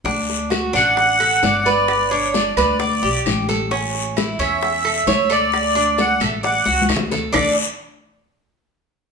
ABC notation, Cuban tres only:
X:1
M:4/4
L:1/8
Q:1/4=132
K:D
V:1 name="Cuban tres"
D2 F D2 A d B- | B D2 B d G2 A | C2 E C2 A c A- | A D2 A d F2 A |
[DAd] z6 z |]